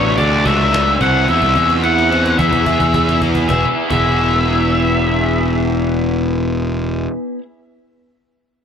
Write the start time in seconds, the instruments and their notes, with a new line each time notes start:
Already playing: picked electric bass A1, overdriven electric guitar F#3 B3 D4, lead electric guitar C#5
0.18 picked electric bass D2, overdriven electric guitar F#3 A3 D4, lead electric guitar D5, cajon bass, cajon slap
0.45 picked electric bass C#2, overdriven electric guitar F#3 A3 D4, lead electric guitar E5, cajon bass
0.72 overdriven electric guitar F#3 A3 D4, cajon slap
1.00 picked electric bass C2, overdriven electric guitar E3 C4 E4, lead electric guitar F#5, cajon bass
1.28 picked electric bass E2, overdriven electric guitar E3 C4 E4, lead electric guitar E5, cajon bass, cajon slap
1.42 picked electric bass C2, cajon bass
1.55 picked electric bass E2, overdriven electric guitar E3 C4 E4, cajon bass
1.70 cajon slap
1.83 overdriven electric guitar E3 C4 E4, lead electric guitar F#5, cajon slap
1.99 cajon slap
2.11 overdriven electric guitar E3 C4 E4, cajon slap
2.26 cajon slap
2.38 picked electric bass E2, overdriven electric guitar B3 E4 G#4, lead electric guitar E5, cajon bass, cajon slap
2.53 picked electric bass E2, cajon bass
2.66 overdriven electric guitar B3 E4 G#4, cajon bass
2.80 picked electric bass E2, cajon bass
2.94 overdriven electric guitar B3 E4 G#4, cajon bass
3.09 cajon slap
3.22 overdriven electric guitar B3 E4 G#4, cajon bass
3.35 cajon bass
3.48 picked electric bass E1, overdriven electric guitar B3 E4, lead electric guitar E5, cajon bass, cajon slap
3.52 overdriven electric guitar G#4
3.88 picked electric bass E1, overdriven electric guitar B3 E4, lead electric guitar E5, cajon bass
3.93 overdriven electric guitar G#4